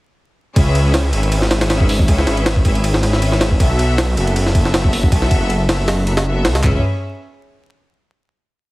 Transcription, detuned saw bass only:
0.56 C#2
1.13 G#1
2.08 C#2
2.27 G#1
2.65 G#1
3.60 B1
4.17 F#1
5.12 B1
5.31 F#1
5.69 F#1
6.45 C#2
6.64 C#2

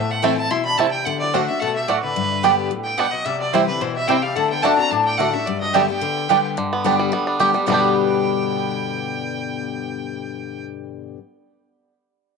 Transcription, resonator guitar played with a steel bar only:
0.10 A3
0.24 C4
0.51 E4
0.66 D4
0.78 C4
0.93 B3
1.07 A3
1.21 F#3
1.34 F#3
1.49 G3
1.61 A3
1.76 G3
1.89 F#3
2.03 D3
2.86 B3
2.98 B3
3.13 F#3
3.26 G3
3.40 F#3
3.54 E3
3.67 D3
3.81 E3
3.95 G3
4.08 C4
4.23 G3
4.36 A3
4.51 B3
4.64 D4
4.79 C4
4.91 D4
5.05 B3
5.20 A3
5.34 G3
5.47 G3
5.61 F#3
5.75 G3
5.89 B3
7.66 B3

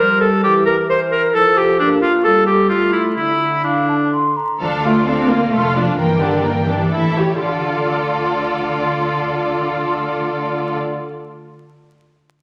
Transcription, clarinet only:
0.20 A4
0.43 G4
0.66 A#4
0.89 C5
1.11 A#4
1.34 A4
1.57 G4
1.79 D4
2.01 F4
2.24 A4
2.46 G4
2.69 F4
2.92 E4
3.16 E4
3.64 D4

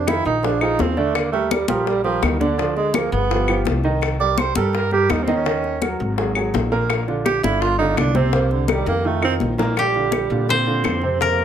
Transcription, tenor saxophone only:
0.08 E4
0.26 D#4
0.45 D4
0.62 D#4
0.81 C4
0.98 A3
1.15 A#3
1.32 A3
1.51 G3
1.68 F3
1.87 G3
2.04 F3
2.24 D#3
2.39 D3
2.59 F3
2.76 G#3
2.94 A#3
3.12 B3
4.20 D5
4.38 C5
4.56 A4
4.75 A#4
4.93 G4
5.11 D#4
5.23 C4
5.35 C#4
7.26 G4
7.43 E4
7.62 F4
7.78 D#4
7.98 D4
8.16 C4
8.34 A#3
8.52 D3
8.70 G3
8.87 A#3
9.06 A3
9.24 C4
9.78 G3
10.50 C4
11.21 A#3

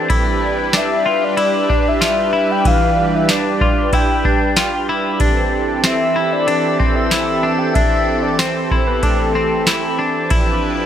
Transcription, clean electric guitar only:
0.10 E4
0.74 D4
1.06 F4
1.37 E4
1.70 D4
2.01 F4
2.33 E4
2.65 E3
3.29 D4
3.61 F4
3.93 E4
4.25 D4
4.57 F4
4.89 E4
5.20 D4
5.85 C4
6.16 E4
6.48 D4
6.80 C4
7.11 E4
7.43 D4
7.76 D4
8.39 C4
8.72 E4
9.03 D4
9.35 C4
9.67 E4
9.99 D4
10.31 E4

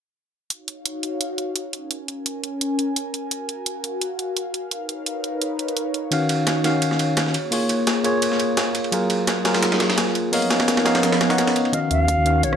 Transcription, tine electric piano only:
6.11 D#3 C#4 F#4 F5
6.63 D#3 C#4 F#4 F5
7.51 A#3 F4 G#4 C#5
8.04 A#3 F4 G#4 C#5
8.92 F#3 F4 G#4 A#4
9.44 F#3 F4 G#4 A#4
10.32 B3 A#4 C#5 D#5 F5
10.84 B3 A#4 C#5 D#5 F5
11.29 B3 A#4 C#5 D#5 F#5
11.72 D#3 C#4 F#4 F5
12.25 D#3 C#4 F#4 F5

